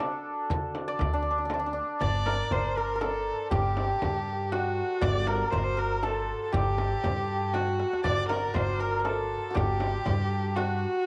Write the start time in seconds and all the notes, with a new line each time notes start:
Already playing: D4 F#4 A4
0.00 tombak tek, frame drum
0.50 D3, frame drum, tombak dum
0.75 tombak tek, frame drum
0.88 D5
0.99 D2, frame drum, tombak dum
1.13 D4
1.22 D4
1.26 tombak ka
1.31 D4
1.38 D4
1.45 D4
1.50 D4, tombak tek, frame drum
1.59 D4
1.64 D4, tombak ka
1.73 D4
2.01 G1 D5, frame drum, tombak dum
2.26 A#4, tombak tek, frame drum
2.51 G1 C5, tombak dum, frame drum
2.77 A#4
2.96 A#4
3.01 A4, tombak tek, frame drum
3.51 G1 G4, tombak dum, frame drum
3.77 tombak tek, frame drum
4.02 G2, frame drum, tombak dum
4.27 tombak ka
4.52 F#4, tombak tek, frame drum
5.01 G1 D5, frame drum, tombak dum
5.27 A#4, tombak tek, frame drum
5.50 G1 C5, frame drum, tombak dum
5.58 A#4
5.64 C5
5.77 A#4
6.03 A4, tombak tek, frame drum
6.44 A4
6.52 G1 G4, frame drum, tombak dum
6.78 tombak tek, frame drum
7.04 G2, frame drum, tombak dum
7.30 tombak ka
7.53 F#4, tombak tek, frame drum
7.67 tombak ka
7.80 tombak tek
7.93 tombak ka
8.04 G1 D5, frame drum, tombak dum
8.28 A#4, tombak tek, frame drum
8.54 G1 C5, tombak dum, frame drum
8.80 A#4
8.99 A#4
9.05 A4, tombak tek, frame drum
9.50 F#4 G4
9.55 G1 G4, frame drum, tombak dum
9.80 tombak tek, frame drum
10.06 G2, frame drum, tombak dum
10.32 tombak ka
10.55 F#4, tombak tek, frame drum